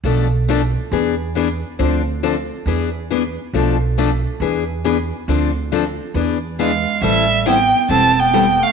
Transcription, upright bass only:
X:1
M:4/4
L:1/8
Q:"Swing" 1/4=138
K:Am
V:1 name="Upright bass" clef=bass
B,,,4 E,,4 | D,,4 E,,4 | B,,,4 E,,4 | D,,4 E,,4 |
A,,,4 E,,,4 |]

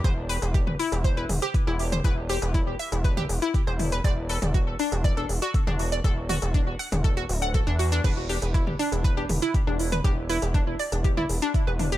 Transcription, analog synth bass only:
X:1
M:4/4
L:1/16
Q:1/4=120
K:Em
V:1 name="Analog synth bass" clef=bass
E,,,3 E,,,3 z E,,,3 E,,, z2 E,,,3 | E,,,3 E,,,3 z E,,,3 E,,, z2 E,,,3 | E,,,3 E,,,3 z E,,,3 E,,, z2 E,,,3 | E,,,3 E,,,3 z E,,,3 D,,,3 E,,3 |
E,,,3 E,,,3 z E,,,3 E,,, z2 E,,,3 | E,,,3 E,,,3 z E,,,3 E,,, z2 E,,,3 |]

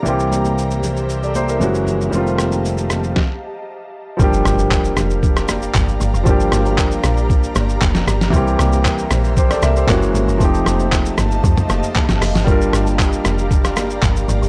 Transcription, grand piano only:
X:1
M:4/4
L:1/16
Q:1/4=116
K:Gm
V:1 name="Grand piano"
z8 z [Ad] [Gc] [=EB]2 z3 | z16 | z16 | z16 |
z8 [Gc] [Ad] [B=e] [Gc]2 z3 | z16 | z16 |]
V:2 name="Grand piano"
[=E,G,B,CG]12 [E,^G,^A,^C^F]4 | [E,G,_A,=A,CF]8 z8 | [F,G,B,DG]16 | [F,G,B,DG]16 |
[=E,G,B,CG]12 [E,^G,^A,^C^F]4 | [F,A,CEG]16 | [G,B,DFB]16 |]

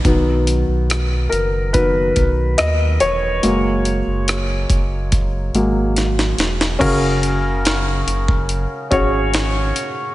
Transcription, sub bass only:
X:1
M:4/4
L:1/16
Q:1/4=71
K:F#mix
V:1 name="Sub bass" clef=bass
B,,,3 B,,,3 F,,,4 B,,,2 D,,2 E,,,2 | F,,,3 F,,,3 F,,,4 G,,,4 E,,,2 | F,,,6 F,,,3 z G,,,4 z2 |]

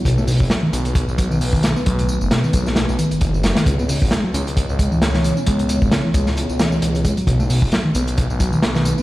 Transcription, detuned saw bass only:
X:1
M:4/4
L:1/16
Q:"Swing 16ths" 1/4=133
K:Bmix
V:1 name="Detuned saw bass" clef=bass
B,,,3 F,,, z2 B,,,3 B,,,3 B,,,3 z | B,,,3 F,,, z2 B,,,3 B,,, z F,,, F,,,3 z | C,,3 G,,, z2 C,,3 C,,3 C,,3 z | C,,3 G,,, z2 C,,3 C,,3 C,,3 z |
B,,,3 F,,, z2 B,,,3 B,,,3 B,,,3 z |]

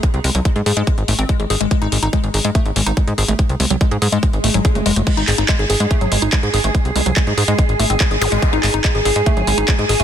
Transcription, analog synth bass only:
X:1
M:4/4
L:1/16
Q:1/4=143
K:G#
V:1 name="Analog synth bass" clef=bass
z B,,, B,,, B,,, z G,, G,, G,, z G,,, G,,, G,,, z G,,, G,,, G,,, | z G,,, G,,, G,,, z G,,, G,,, G,, z G,,, G,,, G,,, z G,, G,,, G,,, | z B,,, B,,, B,,, z G,, G,, G,, z G,,, G,,, G,,, z ^F,,, F,,, F,,, | z G,,, G,,, G,,, z G,,, G,,, G,, z G,,, G,,, G,,, z G,, G,,, G,,, |
z B,,, B,,, B,,, z G,, G,, G,, z G,,, G,,, G,,, z G,,, G,,, G,,, | z G,,, G,,, G,,, z G,,, G,,, G,, z G,,, G,,, G,,, z G,, G,,, G,,, |]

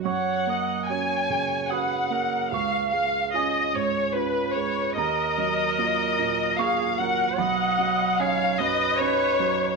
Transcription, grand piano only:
X:1
M:3/4
L:1/8
Q:1/4=74
K:F#
V:1 name="Grand piano"
c'4 d'2 | c'2 g3 z | a4 c'2 | b2 g3 z |]
V:2 name="Grand piano"
F,, A, [CF] C, [CF] A, | C,, G, [CE] G,, [CE] G, | D,, F, [A,E] A,, [A,E] F, | B,,, F, [CD] F,, [CD] F, |]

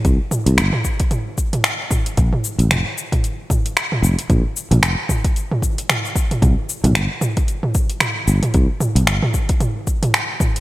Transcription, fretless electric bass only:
X:1
M:4/4
L:1/16
Q:"Swing 16ths" 1/4=113
K:Bbmix
V:1 name="Fretless electric bass" clef=bass
C,, z2 C,, G,,, z8 z3 | B,,, z2 B,,, F,,, z8 z F,,, z | B,,, z2 B,,, F,,, z8 z3 | C,, z2 C,, G,,, z8 z G,,, z |
C,, z2 C,, G,,, z8 z3 |]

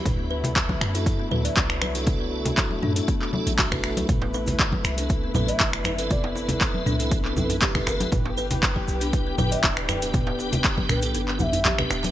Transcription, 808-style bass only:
X:1
M:4/4
L:1/16
Q:1/4=119
K:Ador
V:1 name="808-style bass" clef=bass
D,,4- D,, z F,,3 z D,, z C,,4- | C,,4- C,, z F,, z4 A,,,4 C,, | A,,,4- A,,, z C,,3 z A,,, z G,,,4- | G,,,4- G,,, z C,,2 A,,,4- A,,, z G,,, z |
G,,,4- G,,, z B,,,3 z G,,, z D,,,4- | D,,,4- D,,, z B,,,2 G,,,4 A,,, z D,,, z |]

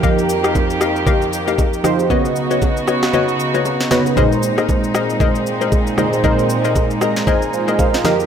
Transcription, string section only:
X:1
M:4/4
L:1/8
Q:"Swing 16ths" 1/4=116
K:Bbm
V:1 name="String section"
[F,,E,B,=G]8 | [D,_CEG]8 | [B,,A,C]8- | [B,,A,C]6- [B,,A,C] [F,,E,B,=G] |]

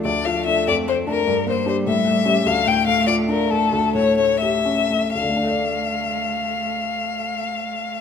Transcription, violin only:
X:1
M:6/8
L:1/8
Q:3/8=90
K:Dm
V:1 name="Violin"
d f e d c B- | B c c e3 | f g f d B A- | A ^c c e3 |
f6- | f6 |]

